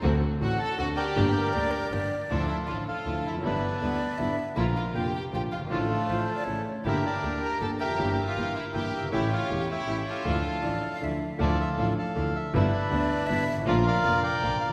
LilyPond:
<<
  \new Staff \with { instrumentName = "Bandoneon" } { \time 3/4 \key g \minor \tempo 4 = 159 << { r4 fis''8 a''8 fis''8 g''8~ | g''2 r4 | \key d \minor d''8 e''8 f''8 f''4 e''8 | b'2~ b'8 r8 |
e''8 f''8 g''8 g''8 g''8 f''8 | a'2~ a'8 r8 | e''8 d''4 bes''8 a''8 g''8~ | g''8. f''8. e''8 g''8. r16 |
e''8 f''8. g''16 e''4 f''8~ | f''2 r4 | d''8 e''8 f''8 f''4 e''8 | b'2~ b'8 r8 |
d''8 f''4 g''4 f''8 | } \\ { r2 r8 <bes' d''>8~ | <bes' d''>2 r4 | <f' a'>4. a'4. | <d' e'>2~ <d' e'>8 r8 |
bes'4. r4. | <d' f'>2 r4 | <g' bes'>8 <g' bes'>4. r8 <bes' e''>8~ | <bes' e''>8. bes'4~ bes'16 <bes' e''>4 |
<g' cis''>8 cis''4 <g' cis''>4 a'8~ | a'2 r4 | <f' a'>4. a'4. | <d' e'>2~ <d' e'>8 r8 |
<f' bes'>8 <bes' d''>4 <bes' d''>4. | } >> }
  \new Staff \with { instrumentName = "Flute" } { \time 3/4 \key g \minor r2. | r8 bes'8 d''8 bes'8 d''4 | \key d \minor r2. | r4 d''4 e''8. r16 |
r2. | r4 c''8. d''16 cis''8. r16 | r2. | r2. |
r2. | r4 d''8. f''16 e''4 | r2. | r4 d''4 e''8. r16 |
r2. | }
  \new Staff \with { instrumentName = "Violin section" } { \time 3/4 \key g \minor r4 fis'8 a'8 fis'8 g'8~ | g'2 r4 | \key d \minor d'8 e'8 f'8 f'4 e'8 | b2~ b8 r8 |
e'8 f'8 g'8 g'8 g'8 f'8 | a2~ a8 r8 | e'8 d'4 bes'8 a'8 g'8~ | g'8. f'8. e'8 g'8. r16 |
e'8 f'8. g'16 e'4 f'8~ | f'2 r4 | r2. | r2. |
r2. | }
  \new Staff \with { instrumentName = "String section" } { \time 3/4 \key g \minor <c' d' fis'>8 r8 <c' d' fis'>8 r8 <c' d' fis'>8 r8 | <bes d' g'>8 r8 <bes d' g'>8 r8 <bes d' g'>8 r8 | \key d \minor <f d' e'>8 r8 <f d' e'>8 r8 <f d' e'>8 r8 | <g b e'>8 r8 <g b e'>8 r8 <g b e'>8 r8 |
<bes d' f'>8 r8 <bes d' f'>8 r8 <bes d' f'>8 r8 | <a d' f'>8 r8 <a d' f'>8 r8 <a cis' e'>8 r8 | <bes d' g'>8 r8 <bes d' g'>8 r8 <bes d' g'>8 r8 | <bes e' g'>8 r8 <bes e' g'>8 r8 <bes e' g'>8 r8 |
<a cis' g'>8 r8 <a cis' g'>8 r8 <a cis' g'>8 r8 | <f d' e'>8 r8 <f d' e'>8 r8 <f d' e'>8 r8 | <f d' e'>8 r8 <f d' e'>8 r8 <f d' e'>8 r8 | <g b e'>8 r8 <g b e'>8 r8 <g b e'>8 r8 |
<bes d' f'>8 r8 <bes d' f'>8 r8 <bes d' f'>8 r8 | }
  \new Staff \with { instrumentName = "Grand piano" } { \clef bass \time 3/4 \key g \minor <d, d a c' fis'>8 r8 <a,, a,>8 r8 <d, d>8 r8 | <g,, g, d g bes g'>8 r8 <d, d>8 r8 <g,, g,>8 r8 | \key d \minor <d, d f a e'>8 r8 <a,, a, d f a e'>8 r8 <d, d f a e'>8 r32 e,32 f,32 fis,32 | <g,, g, d g b e'>8 r8 <d, d g b e'>8 r8 <g,, g, d g b e'>8 r8 |
<bes,, bes, d f bes f'>8 r8 <f,, f, d f bes f'>8 r8 <bes,, bes, d f bes f'>8 r32 fis,,32 g,,32 gis,,32 | <a,, a, d f a f'>8 r8 <a,, a, d f a f'>8 r8 <a,, a, cis e a e'>8 r8 | <g,, g, d g bes g'>8 r8 <d, d g bes g'>8 r8 <g,, g, d g bes g'>8 r32 e,32 f,32 fis,32 | <g,, g, e g bes g'>8 r8 <g,, g, e g bes g'>8 r8 <g,, g, e g bes g'>8 r32 fis,,32 g,,32 gis,,32 |
<a,, a, e a cis' g'>8 r8 <e,, e, e a cis' g'>8 r8 <a,, a, e a cis' g'>8 r8 | <d, d e a d' f'>8 r8 <a,, a, e a d' f'>8 r8 <d, d e a d' f'>8 r8 | <d, d e a d' f'>8 r8 <a,, a, e a d' f'>8 r8 <d, d e a d' f'>8 r8 | <g,, g, d g b e'>8 r8 <d, d g b e'>8 r8 <g,, g, d g b e'>8 r32 g,,32 gis,,32 a,,32 |
<bes,, bes, d f bes f'>8 r8 <f,, f, d f bes f'>8 r8 <bes,, bes, d f bes f'>8 r32 fis,,32 g,,32 r32 | }
  \new Staff \with { instrumentName = "Double bass" } { \clef bass \time 3/4 \key g \minor d,8 r8 a,,8 r8 d,8 r8 | g,,8 r8 d,8 r8 g,,8 r8 | \key d \minor d,8 r8 a,,8 r8 d,8 f,,8 | g,,8 r8 d,8 r8 g,,8 r8 |
bes,,8 r8 f,,8 r8 bes,,8 g,,8 | a,,8 r8 a,,8 r8 a,,8 r8 | g,,8 r8 d,8 r8 g,,8 f,,8 | g,,8 r8 g,,8 r8 g,,8 g,,8 |
a,,8 r8 e,,8 r8 a,,8 r8 | d,8 r8 a,,8 r8 d,8 r8 | d,8 r8 a,,8 r8 d,8 r8 | g,,8 r8 d,8 r8 g,,8 gis,,8 |
bes,,8 r8 f,,8 r8 bes,,8 g,,8 | }
>>